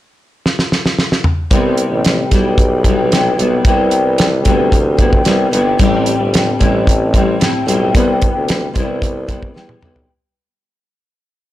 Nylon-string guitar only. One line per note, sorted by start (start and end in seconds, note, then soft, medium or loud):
1.51 2.31 C3 medium
1.51 2.31 G3 medium
1.51 2.32 B3 medium
1.51 2.34 E4 medium
2.31 2.86 G3 medium
2.31 2.86 B3 medium
2.31 2.88 E4 medium
2.85 3.10 C3 medium
2.85 3.11 G3 medium
2.85 3.12 B3 medium
2.85 3.13 E4 medium
3.11 3.37 C3 medium
3.11 3.38 G3 medium
3.11 3.39 B3 medium
3.11 3.40 E4 medium
3.38 3.64 C3 medium
3.38 3.65 G3 medium
3.38 3.66 B3 medium
3.42 3.67 E4 medium
3.65 4.43 C3 medium
3.65 4.45 G3 medium
3.65 4.46 B3 medium
3.65 4.48 E4 medium
4.44 4.96 C3 medium
4.44 4.98 G3 medium
4.44 4.99 B3 medium
4.44 5.01 E4 medium
4.97 5.23 C3 medium
4.97 5.25 G3 medium
4.97 5.26 B3 medium
4.97 5.27 E4 medium
5.24 5.50 C3 medium
5.24 5.52 G3 medium
5.24 5.53 B3 medium
5.28 5.54 E4 medium
5.51 5.79 C3 medium
5.51 5.78 G3 medium
5.51 5.80 B3 medium
5.55 5.80 E4 medium
5.78 6.58 A2 medium
5.78 6.60 G3 medium
5.78 6.62 C4 medium
5.78 6.63 E4 medium
6.59 7.12 A2 medium
6.59 7.14 G3 medium
6.59 7.15 C4 medium
6.59 7.17 E4 medium
7.13 7.39 A2 medium
7.13 7.40 G3 medium
7.13 7.42 C4 medium
7.13 7.42 E4 medium
7.40 7.65 A2 medium
7.40 7.66 G3 medium
7.40 7.68 C4 medium
7.40 7.69 E4 medium
7.66 7.94 A2 medium
7.66 7.94 G3 medium
7.66 7.95 C4 medium
7.70 7.95 E4 medium
7.94 8.73 C3 medium
7.94 8.74 G3 medium
7.94 8.76 B3 medium
7.94 8.77 E4 medium
8.73 9.27 C3 medium
8.73 9.28 G3 medium
8.73 9.30 B3 medium
8.73 9.30 E4 medium
9.27 9.53 C3 medium
9.27 9.55 G3 medium
9.27 9.56 B3 medium
9.27 9.57 E4 medium
9.54 9.80 C3 medium
9.54 9.81 G3 medium
9.54 9.82 B3 medium
9.54 9.84 E4 medium
9.81 10.09 C3 medium
9.81 10.09 G3 medium
9.81 10.10 B3 medium
9.85 10.11 E4 medium